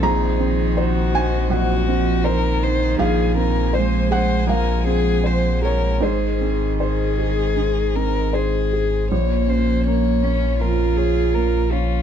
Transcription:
<<
  \new Staff \with { instrumentName = "Violin" } { \time 4/4 \key bes \minor \tempo 4 = 80 aes'4 ges'4 ges'4 bes'8 c''8 | aes'8 bes'8 c''8 c''8 bes'8 aes'8 c''8 bes'8 | aes'4 aes'4. bes'8 aes'4 | des''8 c''8 des''4 bes'8 aes'8 bes'8 f'8 | }
  \new Staff \with { instrumentName = "Felt piano" } { \time 4/4 \key bes \minor << { bes''4. aes''8 ges''4. r8 | f''4. ges''8 f''4. des''8 | c''2. r4 | r1 | } \\ { bes,,8 c'8 c''8 ees'8 bes,,8 c'8 c''8 ees'8 | bes,,8 c'8 c''8 aes'8 bes,,8 c'8 c''8 aes'8 | aes,8 c'8 c''8 aes'8 ees8 c'8 c''8 aes'8 | bes,,8 des'8 bes8 des''8 f,8 des''8 bes8 des''8 | } >> }
  \new Staff \with { instrumentName = "String section" } { \time 4/4 \key bes \minor << { ees''1 | aes''1 | ees''1 | des'1 | } \\ { <c' c''>1 | <aes aes'>1~ | <aes aes'>1 | <bes f'>1 | } >> }
  \new Staff \with { instrumentName = "Cello" } { \clef bass \time 4/4 \key bes \minor ees2 ges8 f8 ees4~ | ees4 aes4 f4 f4 | ees2.~ ees8. r16 | bes4. des'8 f'4. des'8 | }
  \new Staff \with { instrumentName = "Sub bass" } { \clef bass \time 4/4 \key bes \minor bes,,1 | bes,,1 | aes,,1 | bes,,1 | }
>>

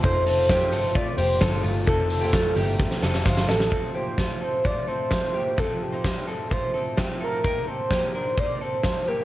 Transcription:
<<
  \new Staff \with { instrumentName = "Soft synth lead" } { \time 4/4 \key f \mixolydian \tempo 4 = 129 c''8 c''4. d''8 c''4 r8 | a'8 a'4. r4. a'8~ | a'8 c''4 c''8 d''8 c''4. | a'8 g'4 a'8 c''4 r8 bes'8~ |
bes'8 c''4 c''8 d''8 c''4 bes'8 | }
  \new Staff \with { instrumentName = "Upright piano" } { \time 4/4 \key f \mixolydian << { r1 | r2 r8 a''8 f''8 ees''8 | r1 | r1 |
r1 | } \\ { <ees' f' a'>2. <ees' f' a'>4 | <ees' f' a'>1 | r1 | r1 |
r1 | } >> }
  \new Staff \with { instrumentName = "Clean electric guitar" } { \time 4/4 \key f \mixolydian <ees' c''>8 <c' a'>8 <c' g'>8 <c' a'>8 <a f'>8 <bes g'>8 <c' a'>8 <a f'>8 | <c' a'>8. <bes g'>16 <a f'>8 <bes g'>4 <c' a'>8 <ees' c''>8 <c' a'>8 | <c' a'>8 <bes g'>8 <a f'>8 <c' a'>8 <f' c''>8 <c' a'>4 <bes g'>8 | <c' a'>8. <ees' c''>8. <c' a'>8 <f' c''>8 <c' a'>8 <c' g'>8 <c' a'>8 |
<ees' bes'>8 <c' a'>8 <bes g'>8 <d' bes'>8 <ees' c''>8 <c' a'>4 <bes g'>8 | }
  \new Staff \with { instrumentName = "Twelve-string acoustic guitar" } { \time 4/4 \key f \mixolydian <ees a c' f'>8. <f, c ees a c' f'>8. <f, c ees a c' f'>8. <ees a c' f'>4 <f, c ees a c' f'>8. | <ees a c' f'>8. <f, c ees a c' f'>8. <f, c ees a c' f'>8. <ees a c' f'>4 <f, c ees a c' f'>8. | <f, c f a c' f'>4 <f a c' f'>4 <f a c' f'>4 <f a c' f'>4 | <f, c f a c' f'>4 <f a c' f'>4 <f a c' f'>4 <f a c' f'>4 |
<ees bes c' g'>2 <ees bes c' g'>4 <ees bes c' g'>4 | }
  \new Staff \with { instrumentName = "Picked electric bass" } { \clef bass \time 4/4 \key f \mixolydian f,,4. g,,8. r16 f,,8 g,,8 g,,8 | f,,4. g,,8. r16 f,,8 g,,8 a,,8 | r1 | r1 |
r1 | }
  \new DrumStaff \with { instrumentName = "Drums" } \drummode { \time 4/4 <hh bd>8 hho8 <hh bd sn>8 hho8 <hh bd>8 hho8 <hh bd sn>8 hho8 | <hh bd>8 hho8 <hh bd sn>8 hho8 <bd sn>16 sn16 sn16 sn16 <bd sn>16 sn16 sn16 sn16 | <hh bd>4 <hh bd sn>4 <hh bd>4 <hh bd sn>4 | <hh bd>4 <hh bd sn>4 <hh bd>4 <hh bd sn>4 |
<hh bd>4 <hh bd sn>4 <hh bd>4 <hh bd sn>4 | }
>>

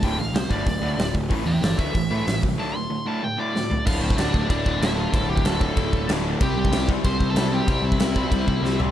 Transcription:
<<
  \new Staff \with { instrumentName = "Lead electric guitar" } { \time 4/4 \key c \mixolydian \tempo 4 = 188 g''8 f''8 c''8 d''2 r8 | r8 <e'' g''>8 <a' d''>8 e''2 r8 | a''8 c'''4 a''8 g''8 d''4. | <f' f''>8 <c' c''>8 <d' d''>4 <d' d''>4 <e' e''>8 <f' f''>8 |
<a' a''>8 <g' g''>8 <a' a''>2 r4 | <g' g''>8 <g' g''>4 r8 <c'' c'''>8. <a' a''>8. <g' g''>8 | <g' g''>8 <e' e''>2. r8 | }
  \new Staff \with { instrumentName = "Overdriven electric guitar" } { \clef bass \time 4/4 \key c \mixolydian <d, a, d>8 <d, a,>8 <d, a,>8 <d, a, d>8 <d, a,>8 <d, a, d>8 <d, a,>8 <d, a,>8 | <a, e a>8 <a, e>8 <a, e>8 <a, e a>8 <a, e>8 <a, e a>8 <a, e>8 <a, e>8 | <d, a, d>8 <d, a,>8 <d, a,>8 <d, a, d>8 <d, a,>8 <d, a, d>8 <d, a,>8 <d, a,>8 | <d, a, d>4 <d, a, d>8 <d, a, d>8 <d, a, d>4 <d, a, d>8 <d, a, d>8 |
<d, a, d>4 <d, a, d>8 <d, a, d>8 <d, a, d>4 <d, a, d>8 <d, a, d>8 | <c g c'>4 <c g c'>8 <c g c'>8 <c g c'>4 <c g c'>8 <c g c'>8 | <c g c'>4 <c g c'>8 <c g c'>8 <c g c'>4 <c g c'>8 <c g c'>8 | }
  \new Staff \with { instrumentName = "Picked electric bass" } { \clef bass \time 4/4 \key c \mixolydian d,,8 a,,8 c,8 g,,8 d,,8 d,8 d,,8 d,,8 | a,,8 e,8 g,,8 d,8 a,,8 a,8 a,,8 c,8 | r1 | d,,8 d,,8 d,,4 d,,8 d,,8 d,,4 |
d,,8 d,,8 d,,4 d,,8 d,,8 d,,4 | c,8 c,8 c,4 c,8 c,8 c,4 | c,8 c,8 c,4 c,8 c,8 c,4 | }
  \new DrumStaff \with { instrumentName = "Drums" } \drummode { \time 4/4 <hho bd>4 <hho sn>8 bd8 <hho bd>4 <hho sn>8 bd8 | <hho bd>4 <hho sn>8 bd8 <hho bd>4 <hho sn>8 bd8 | r4 r4 r4 sn8 tomfh8 | <cymc bd>8. bd16 <cymc sn>8 bd8 <cymc bd>8 bd8 <cymc sn>4 |
<cymc bd>8. bd16 <cymc sn>8 bd8 <cymc bd>8 bd8 <cymc sn>4 | <cymc bd>8. bd16 <cymc sn>8 bd8 <cymc bd>8 bd8 <cymc sn>4 | <cymc bd>8. bd16 <cymc sn>8 bd8 <cymc bd>8 bd8 sn8 tomfh8 | }
>>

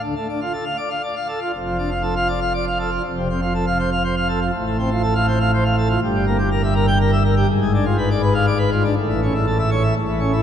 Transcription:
<<
  \new Staff \with { instrumentName = "Pipe organ" } { \time 3/4 \key d \minor \tempo 4 = 121 d16 a16 d'16 f'16 a'16 f''16 d''16 f''16 d''16 f''16 a'16 f'16 | f,16 f16 d'16 f'16 a'16 f''16 d''16 f''16 d''16 f''16 a'16 f'16 | f,16 c16 c'16 f'16 a'16 f''16 c''16 f''16 c''16 f''16 a'16 f'16 | a,16 a16 c'16 f'16 a'16 f''16 c''16 f''16 c''16 f''16 a'16 f'16 |
g,16 g16 bes16 g'16 bes'16 e''16 bes'16 g''16 bes'16 e''16 bes'16 g'16 | gis,16 gis16 d'16 eis'16 b'16 d''16 b'16 eis''16 d''16 b'16 eis'16 d'16 | a,16 e16 cis'16 e'16 a'16 e''16 cis''16 e''16 a,16 e16 cis'16 e'16 | }
  \new Staff \with { instrumentName = "Pipe organ" } { \clef bass \time 3/4 \key d \minor d,16 r2 r8. | f,,2. | f,,2. | a,,2. |
g,,2. | gis,,2. | a,,2 a,,4 | }
>>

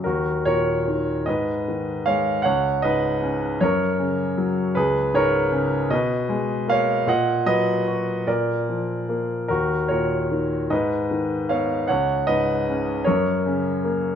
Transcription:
<<
  \new Staff \with { instrumentName = "Grand piano" } { \time 6/8 \key ees \minor \tempo 4. = 51 <ges' bes'>8 <bes' des''>4 <ces'' ees''>4 <des'' f''>8 | <des'' ges''>8 <ces'' ees''>4 <bes' des''>4 r8 | <aes' ces''>8 <bes' des''>4 <ces'' ees''>4 <des'' f''>8 | <ees'' ges''>8 <ces'' ees''>4 <bes' d''>4 r8 |
<ges' bes'>8 <bes' des''>4 <ces'' ees''>4 <des'' f''>8 | <des'' ges''>8 <ces'' ees''>4 <bes' des''>4 r8 | }
  \new Staff \with { instrumentName = "Grand piano" } { \clef bass \time 6/8 \key ees \minor ees,8 bes,8 ees8 aes,8 ees8 aes8 | des,8 aes,8 des8 ges,8 des8 ges8 | des,8 aes,8 des8 ces8 aes8 bes8 | bes,8 ges8 ges'8 bes,8 f8 bes8 |
ees,8 bes,8 ees8 aes,8 ees8 ces'8 | des,8 aes,8 des8 ges,8 des8 bes8 | }
>>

